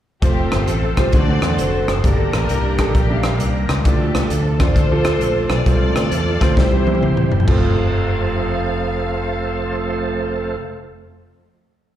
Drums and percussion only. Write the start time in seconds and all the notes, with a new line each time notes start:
0.22 kick, closed hi-hat
0.52 cross-stick, closed hi-hat
0.68 closed hi-hat
0.97 kick, cross-stick, closed hi-hat
1.13 kick, closed hi-hat
1.42 cross-stick, closed hi-hat
1.58 closed hi-hat
1.88 cross-stick, closed hi-hat
2.04 kick, closed hi-hat
2.33 cross-stick, closed hi-hat
2.49 closed hi-hat
2.78 kick, cross-stick, closed hi-hat
2.95 kick, closed hi-hat
3.23 cross-stick, closed hi-hat
3.40 closed hi-hat
3.69 cross-stick, closed hi-hat
3.85 kick, closed hi-hat
4.15 cross-stick, closed hi-hat
4.30 closed hi-hat
4.60 kick, cross-stick, closed hi-hat
4.76 kick, closed hi-hat
5.05 cross-stick, closed hi-hat
5.21 closed hi-hat
5.50 cross-stick, closed hi-hat
5.66 kick, closed hi-hat
5.96 cross-stick, closed hi-hat
6.12 closed hi-hat
6.41 kick, cross-stick, closed hi-hat
6.57 kick, snare
6.87 high tom
6.95 high tom
7.03 mid tom
7.17 mid tom
7.32 floor tom
7.40 floor tom
7.48 kick, crash